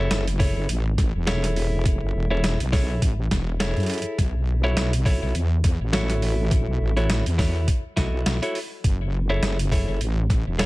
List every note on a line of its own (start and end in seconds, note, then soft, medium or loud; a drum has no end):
0.00 0.25 E4 medium
0.00 0.25 G#4 medium
0.00 0.25 A4 medium
0.00 0.25 C#5 loud
0.11 0.54 F#1 loud
0.11 snare loud
0.11 closed hi-hat medium
0.28 closed hi-hat medium
0.39 0.67 E4 medium
0.39 0.68 G#4 medium
0.39 0.68 A4 medium
0.39 0.68 C#5 medium
0.39 kick loud
0.39 open hi-hat medium
0.56 0.67 F#1 loud
0.69 1.12 A1 loud
0.69 closed hi-hat medium
0.98 kick loud
0.98 snare soft
0.98 closed hi-hat medium
1.14 1.99 E1 loud
1.27 2.27 E4 medium
1.27 2.27 G#4 medium
1.27 2.27 A4 medium
1.27 2.27 C#5 medium
1.27 snare loud
1.27 closed hi-hat medium
1.44 snare soft
1.44 closed hi-hat medium
1.56 open hi-hat medium
1.85 kick loud
1.85 closed hi-hat medium
2.02 2.13 F#1 medium
2.15 2.58 E1 loud
2.30 2.58 E4 loud
2.30 2.58 G#4 medium
2.30 2.58 A4 medium
2.30 2.58 C#5 loud
2.44 snare loud
2.44 closed hi-hat medium
2.60 3.00 B1 medium
2.60 closed hi-hat medium
2.72 3.01 E4 medium
2.72 3.01 G#4 medium
2.72 3.01 A4 medium
2.72 3.00 C#5 loud
2.72 kick loud
2.72 snare medium
2.72 open hi-hat medium
3.02 3.29 A1 loud
3.02 kick loud
3.02 closed hi-hat medium
3.31 3.74 E1 loud
3.31 kick medium
3.31 snare medium
3.31 snare soft
3.31 closed hi-hat medium
3.60 4.17 E4 medium
3.60 4.17 G#4 medium
3.60 4.17 A4 medium
3.60 4.17 C#5 medium
3.60 snare loud
3.60 closed hi-hat medium
3.77 4.03 F#2 loud
3.77 closed hi-hat soft
3.80 closed hi-hat soft
3.83 closed hi-hat soft
3.86 closed hi-hat soft
3.90 closed hi-hat soft
3.90 open hi-hat medium
3.94 closed hi-hat soft
3.98 closed hi-hat soft
4.02 closed hi-hat medium
4.18 4.75 B1 loud
4.18 kick loud
4.18 closed hi-hat medium
4.64 4.91 E4 loud
4.64 4.91 F#4 medium
4.64 4.91 A4 medium
4.64 4.91 C#5 loud
4.77 5.20 B1 loud
4.77 snare loud
4.77 closed hi-hat medium
4.93 closed hi-hat medium
5.05 5.34 E4 loud
5.05 5.34 F#4 medium
5.05 5.34 A4 medium
5.05 5.34 C#5 loud
5.05 kick loud
5.05 open hi-hat medium
5.22 5.33 B1 loud
5.35 5.78 E2 loud
5.35 closed hi-hat medium
5.64 kick loud
5.64 snare soft
5.64 closed hi-hat medium
5.80 6.65 A1 loud
5.93 6.93 E4 medium
5.93 6.93 F#4 medium
5.93 6.93 A4 medium
5.93 6.93 C#5 medium
5.93 snare loud
5.93 closed hi-hat medium
6.10 snare soft
6.10 closed hi-hat medium
6.22 open hi-hat medium
6.51 kick loud
6.51 closed hi-hat medium
6.68 6.78 B1 loud
6.80 7.23 A1 loud
6.97 7.24 E4 loud
6.97 7.24 F#4 medium
6.97 7.24 A4 medium
6.97 7.24 C#5 loud
6.97 closed hi-hat soft
7.10 snare loud
7.10 closed hi-hat medium
7.26 7.66 E2 loud
7.26 closed hi-hat medium
7.38 7.67 E4 medium
7.38 7.67 F#4 medium
7.38 7.67 A4 medium
7.38 7.67 C#5 medium
7.38 kick loud
7.38 snare medium
7.38 open hi-hat medium
7.68 kick loud
7.68 closed hi-hat medium
7.96 8.24 B1 loud
7.96 8.39 E4 medium
7.96 8.39 F#4 medium
7.96 8.39 A4 medium
7.96 8.39 D#5 medium
7.96 kick medium
7.96 snare medium
7.96 snare soft
7.96 closed hi-hat medium
8.26 8.40 B1 loud
8.26 snare loud
8.26 closed hi-hat medium
8.42 8.58 E4 loud
8.42 8.58 F#4 medium
8.42 8.58 A4 medium
8.42 8.58 C#5 loud
8.42 closed hi-hat medium
8.55 open hi-hat medium
8.84 9.41 F#1 loud
8.84 kick loud
8.84 closed hi-hat medium
9.30 9.57 E4 loud
9.30 9.57 G#4 medium
9.30 9.57 A4 medium
9.30 9.57 C#5 loud
9.42 9.85 F#1 loud
9.42 snare loud
9.42 closed hi-hat medium
9.59 closed hi-hat medium
9.72 10.00 E4 medium
9.72 10.00 G#4 medium
9.72 10.00 A4 medium
9.72 10.00 C#5 medium
9.72 kick loud
9.72 open hi-hat medium
9.88 9.99 F#1 loud
10.01 10.44 A1 loud
10.01 closed hi-hat medium
10.30 kick loud
10.30 snare soft
10.30 closed hi-hat medium
10.47 10.66 E1 loud
10.59 10.66 E4 medium
10.59 10.66 G#4 medium
10.59 10.66 A4 medium
10.59 10.66 C#5 medium
10.59 snare loud
10.59 closed hi-hat medium